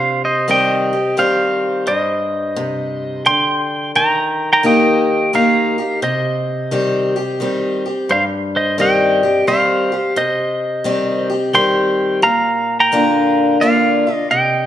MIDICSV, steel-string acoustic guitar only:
0, 0, Header, 1, 2, 480
1, 0, Start_track
1, 0, Key_signature, -3, "minor"
1, 0, Tempo, 691244
1, 1301, Time_signature, 3, 2, 24, 8
1, 10182, End_track
2, 0, Start_track
2, 0, Title_t, "Steel-string acoustic guitar"
2, 0, Program_c, 0, 25
2, 0, Note_on_c, 0, 48, 98
2, 331, Note_on_c, 0, 51, 91
2, 335, Note_on_c, 0, 55, 98
2, 339, Note_on_c, 0, 60, 97
2, 343, Note_on_c, 0, 67, 92
2, 636, Note_off_c, 0, 67, 0
2, 638, Note_off_c, 0, 51, 0
2, 640, Note_off_c, 0, 55, 0
2, 642, Note_off_c, 0, 60, 0
2, 644, Note_on_c, 0, 67, 61
2, 656, Note_on_c, 0, 60, 50
2, 783, Note_off_c, 0, 48, 0
2, 809, Note_off_c, 0, 67, 0
2, 811, Note_off_c, 0, 60, 0
2, 812, Note_on_c, 0, 51, 82
2, 815, Note_on_c, 0, 55, 79
2, 819, Note_on_c, 0, 60, 90
2, 826, Note_on_c, 0, 67, 97
2, 1280, Note_off_c, 0, 51, 0
2, 1282, Note_off_c, 0, 55, 0
2, 1284, Note_off_c, 0, 60, 0
2, 1287, Note_off_c, 0, 67, 0
2, 1296, Note_on_c, 0, 43, 94
2, 1781, Note_on_c, 0, 48, 94
2, 2226, Note_off_c, 0, 43, 0
2, 2245, Note_off_c, 0, 48, 0
2, 2261, Note_on_c, 0, 50, 79
2, 2725, Note_off_c, 0, 50, 0
2, 2746, Note_on_c, 0, 51, 93
2, 3208, Note_off_c, 0, 51, 0
2, 3217, Note_on_c, 0, 51, 104
2, 3221, Note_on_c, 0, 58, 93
2, 3226, Note_on_c, 0, 63, 107
2, 3228, Note_on_c, 0, 67, 98
2, 3682, Note_off_c, 0, 51, 0
2, 3685, Note_off_c, 0, 58, 0
2, 3687, Note_off_c, 0, 63, 0
2, 3688, Note_off_c, 0, 67, 0
2, 3702, Note_on_c, 0, 51, 78
2, 3706, Note_on_c, 0, 58, 95
2, 3711, Note_on_c, 0, 63, 91
2, 3712, Note_on_c, 0, 67, 86
2, 4004, Note_off_c, 0, 51, 0
2, 4005, Note_off_c, 0, 58, 0
2, 4006, Note_off_c, 0, 67, 0
2, 4008, Note_off_c, 0, 63, 0
2, 4014, Note_on_c, 0, 67, 60
2, 4026, Note_on_c, 0, 63, 46
2, 4174, Note_off_c, 0, 67, 0
2, 4180, Note_off_c, 0, 63, 0
2, 4182, Note_on_c, 0, 48, 88
2, 4661, Note_on_c, 0, 51, 93
2, 4666, Note_on_c, 0, 55, 86
2, 4667, Note_on_c, 0, 60, 93
2, 4672, Note_on_c, 0, 67, 103
2, 4963, Note_off_c, 0, 51, 0
2, 4963, Note_off_c, 0, 67, 0
2, 4965, Note_off_c, 0, 55, 0
2, 4966, Note_off_c, 0, 60, 0
2, 4971, Note_on_c, 0, 67, 64
2, 4983, Note_on_c, 0, 60, 49
2, 5108, Note_off_c, 0, 48, 0
2, 5132, Note_off_c, 0, 67, 0
2, 5138, Note_off_c, 0, 60, 0
2, 5138, Note_on_c, 0, 51, 76
2, 5144, Note_on_c, 0, 55, 77
2, 5150, Note_on_c, 0, 60, 82
2, 5150, Note_on_c, 0, 67, 98
2, 5441, Note_off_c, 0, 51, 0
2, 5445, Note_off_c, 0, 55, 0
2, 5447, Note_off_c, 0, 60, 0
2, 5448, Note_off_c, 0, 67, 0
2, 5455, Note_on_c, 0, 67, 57
2, 5468, Note_on_c, 0, 60, 47
2, 5614, Note_off_c, 0, 67, 0
2, 5620, Note_on_c, 0, 43, 94
2, 5621, Note_off_c, 0, 60, 0
2, 6096, Note_on_c, 0, 51, 90
2, 6099, Note_on_c, 0, 55, 99
2, 6106, Note_on_c, 0, 60, 93
2, 6106, Note_on_c, 0, 67, 110
2, 6400, Note_off_c, 0, 51, 0
2, 6402, Note_off_c, 0, 55, 0
2, 6402, Note_off_c, 0, 67, 0
2, 6405, Note_off_c, 0, 60, 0
2, 6410, Note_on_c, 0, 67, 58
2, 6421, Note_on_c, 0, 60, 50
2, 6547, Note_off_c, 0, 43, 0
2, 6571, Note_off_c, 0, 67, 0
2, 6574, Note_off_c, 0, 60, 0
2, 6578, Note_on_c, 0, 51, 80
2, 6582, Note_on_c, 0, 55, 77
2, 6582, Note_on_c, 0, 60, 83
2, 6589, Note_on_c, 0, 67, 93
2, 6879, Note_off_c, 0, 67, 0
2, 6881, Note_off_c, 0, 51, 0
2, 6883, Note_off_c, 0, 55, 0
2, 6883, Note_off_c, 0, 60, 0
2, 6887, Note_on_c, 0, 67, 59
2, 6899, Note_on_c, 0, 60, 45
2, 7050, Note_off_c, 0, 67, 0
2, 7056, Note_off_c, 0, 60, 0
2, 7057, Note_on_c, 0, 48, 94
2, 7529, Note_on_c, 0, 51, 95
2, 7534, Note_on_c, 0, 55, 89
2, 7535, Note_on_c, 0, 60, 107
2, 7541, Note_on_c, 0, 67, 104
2, 7836, Note_off_c, 0, 51, 0
2, 7836, Note_off_c, 0, 67, 0
2, 7839, Note_off_c, 0, 55, 0
2, 7839, Note_off_c, 0, 60, 0
2, 7844, Note_on_c, 0, 67, 60
2, 7859, Note_on_c, 0, 60, 51
2, 7985, Note_off_c, 0, 48, 0
2, 8008, Note_off_c, 0, 67, 0
2, 8009, Note_off_c, 0, 60, 0
2, 8010, Note_on_c, 0, 51, 76
2, 8014, Note_on_c, 0, 55, 79
2, 8017, Note_on_c, 0, 60, 90
2, 8021, Note_on_c, 0, 67, 101
2, 8478, Note_off_c, 0, 51, 0
2, 8480, Note_off_c, 0, 55, 0
2, 8481, Note_off_c, 0, 60, 0
2, 8483, Note_off_c, 0, 67, 0
2, 8488, Note_on_c, 0, 46, 94
2, 8971, Note_on_c, 0, 50, 87
2, 8976, Note_on_c, 0, 58, 105
2, 8980, Note_on_c, 0, 62, 94
2, 8984, Note_on_c, 0, 65, 109
2, 9419, Note_off_c, 0, 46, 0
2, 9437, Note_off_c, 0, 50, 0
2, 9440, Note_off_c, 0, 58, 0
2, 9442, Note_off_c, 0, 62, 0
2, 9444, Note_off_c, 0, 65, 0
2, 9453, Note_on_c, 0, 50, 80
2, 9459, Note_on_c, 0, 58, 79
2, 9461, Note_on_c, 0, 62, 91
2, 9467, Note_on_c, 0, 65, 92
2, 9757, Note_off_c, 0, 50, 0
2, 9760, Note_off_c, 0, 58, 0
2, 9760, Note_off_c, 0, 65, 0
2, 9761, Note_off_c, 0, 62, 0
2, 9769, Note_on_c, 0, 65, 59
2, 9780, Note_on_c, 0, 62, 47
2, 9929, Note_off_c, 0, 65, 0
2, 9935, Note_off_c, 0, 62, 0
2, 9937, Note_on_c, 0, 48, 95
2, 10182, Note_off_c, 0, 48, 0
2, 10182, End_track
0, 0, End_of_file